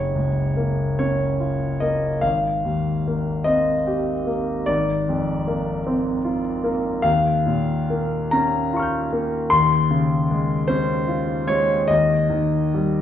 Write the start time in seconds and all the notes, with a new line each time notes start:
Already playing: F#1 C#5
0.16 C#2
0.57 A#3
0.99 C#4 C#5
1.40 F4
1.80 A#3 D#5
2.21 G#1 F5
2.65 D#2
3.08 A#3
3.44 C4 D#5
3.87 G4
4.27 A#3
4.66 G#1 D5
5.09 F2
5.48 A#3
5.87 C4
6.24 F4
6.64 A#3
7.02 D#2 F5
7.46 A#2
7.90 A#3
8.31 C#4 A#5
8.73 F4 A#5 C#6
8.79 F6 G6
9.13 A#3
9.50 D#2 C6
9.91 C#3
10.31 G#3
10.68 C#4 C5
11.08 F4
11.47 G#3 C#5
11.88 D#2 D#5
12.30 D#3
12.74 G3